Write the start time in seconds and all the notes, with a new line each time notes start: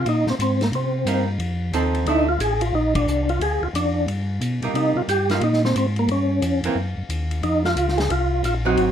0.06 A#2 D#4, ride
0.27 A#2 C4, snare
0.39 G#2 C4, hi-hat pedal, ride
0.61 A#3, snare, ride
0.72 C3 C4, ride
1.05 G2 G3 A#3 D#4, hi-hat pedal, ride
1.39 F2, ride
1.72 D#2 F3 C4 D#4 A4, hi-hat pedal, ride
1.95 ride
2.06 D2 A3 D4 D#4 E4, ride
2.29 F4
2.39 A1 G#4, hi-hat pedal, ride
2.61 F4, ride
2.73 A#1 D#4
2.95 D4, kick, ride
3.06 C2, hi-hat pedal
3.29 F4, ride
3.40 D2 G#4, ride
3.62 D2 F4
3.73 F2 D4, hi-hat pedal, ride
4.07 G2, ride
4.41 B2, hi-hat pedal, ride
4.62 B2 G3 A#3 D#4, ride
4.74 C3 D#4, ride
4.96 C3 F4
5.08 G2 G4, hi-hat pedal, ride
5.30 G3 A#3 D#4 F4, snare, ride
5.41 A#2 D#4, ride
5.53 snare
5.65 C4, snare
5.75 G#2 C4, hi-hat pedal, ride
5.96 A#3, ride
6.08 G2 C#4, ride
6.42 F2, hi-hat pedal, ride
6.63 F2 E3 A#3 C4, ride
6.75 F#2
6.97 F#2
7.09 D#2, hi-hat pedal, ride
7.31 ride
7.43 F2 D#4, ride
7.65 F4, snare
7.76 C#2, hi-hat pedal, ride
7.88 snare
7.98 G#4, snare, ride
8.10 C2 F4, ride
8.43 A#1 F4, hi-hat pedal, ride
8.65 F#3 C4 D#4 F#4
8.76 G#1, ride